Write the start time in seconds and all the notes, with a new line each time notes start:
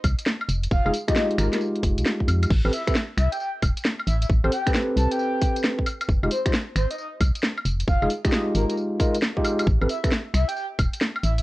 0.04 C2, kick, open hi-hat, tambourine, high woodblock
0.19 closed hi-hat, tambourine
0.26 snare, tambourine
0.41 high woodblock
0.49 F1, open hi-hat, tambourine
0.64 closed hi-hat, tambourine
0.71 F1 F5, kick, tambourine
0.86 F1 G#3 D#4 F4 G#4, high woodblock
0.94 open hi-hat, tambourine
1.08 G#3 D#4 F4 G4 D#5, finger snap, kick, closed hi-hat, tambourine
1.16 D#5, snare, tambourine
1.31 closed hi-hat
1.38 G#1 A#4, finger snap, open hi-hat, tambourine
1.53 A#4, snare, closed hi-hat, tambourine
1.61 tambourine
1.76 closed hi-hat
1.83 F1, kick, open hi-hat, tambourine
1.98 C2, closed hi-hat, tambourine
2.06 snare, tambourine
2.20 kick
2.28 F2, open hi-hat, tambourine, high woodblock
2.43 closed hi-hat, tambourine, high woodblock
2.50 A1, kick, crash, tambourine
2.65 A1 C4 G4 A4 B4, high woodblock
2.73 E5, open hi-hat, tambourine
2.87 C4 G4 A4 B4 E5, finger snap, kick, closed hi-hat, tambourine
2.95 snare, tambourine
3.17 C2 E5, finger snap, open hi-hat, tambourine
3.32 G5, closed hi-hat, tambourine
3.40 G5, tambourine
3.62 E1, kick, open hi-hat, tambourine, high woodblock
3.77 closed hi-hat, tambourine
3.85 snare, tambourine
3.99 high woodblock
4.07 A1 E5, open hi-hat, tambourine
4.22 E5, closed hi-hat, tambourine
4.29 A1, kick
4.44 A1 C4 G4 A4 C5, high woodblock
4.52 G5, open hi-hat, tambourine
4.66 C4 G4 A4 B4, finger snap, kick, closed hi-hat, tambourine
4.74 snare, tambourine
4.96 C2 A5, open hi-hat, tambourine
5.11 G5, closed hi-hat, tambourine
5.19 tambourine
5.41 kick, open hi-hat, tambourine
5.56 closed hi-hat, tambourine
5.64 snare
5.79 kick
5.86 open hi-hat, tambourine, high woodblock
6.01 closed hi-hat, tambourine, high woodblock
6.09 F1, kick, tambourine
6.23 F1 G#3 D#4 F4 G4, high woodblock
6.31 C5, open hi-hat, tambourine
6.46 G#3 D#4 F4 G4 C5, finger snap, kick, closed hi-hat, tambourine
6.53 snare, tambourine
6.76 G#1 C5, finger snap, open hi-hat, tambourine
6.91 D#5, closed hi-hat, tambourine
6.98 D#5, tambourine
7.20 C2, kick, open hi-hat, tambourine, high woodblock
7.35 closed hi-hat, tambourine
7.43 snare, tambourine
7.58 high woodblock
7.65 F1, open hi-hat, tambourine
7.80 closed hi-hat, tambourine
7.88 F1 F5, kick, tambourine
8.02 F1 G#3 D#4 F4 G#4, high woodblock
8.10 open hi-hat, tambourine
8.25 G#3 D#4 F4 G4 D#5, finger snap, kick, closed hi-hat, tambourine
8.32 D#5, snare, tambourine
8.55 G#1 A#4, open hi-hat, tambourine
8.69 A#4, closed hi-hat, tambourine
8.77 tambourine
9.00 G#3 D#4 F4 A#4, kick, open hi-hat, tambourine
9.15 closed hi-hat, tambourine
9.22 snare, tambourine
9.37 G#3 D#4 F4 G4, kick
9.45 open hi-hat, tambourine, high woodblock
9.59 closed hi-hat, tambourine, high woodblock
9.67 A1, kick, tambourine
9.81 A1 C4 G4 A4 B4, high woodblock
9.89 E5, open hi-hat, tambourine
10.04 C4 G4 A4 B4 E5, finger snap, kick, closed hi-hat, tambourine
10.12 snare, tambourine
10.34 C2 E5, finger snap, open hi-hat, tambourine
10.48 G5, closed hi-hat, tambourine
10.56 G5, tambourine
10.79 E1, kick, open hi-hat, tambourine, high woodblock
10.94 closed hi-hat, tambourine
11.01 snare, tambourine
11.16 high woodblock
11.23 A1 E5, open hi-hat, tambourine
11.38 E5, closed hi-hat, tambourine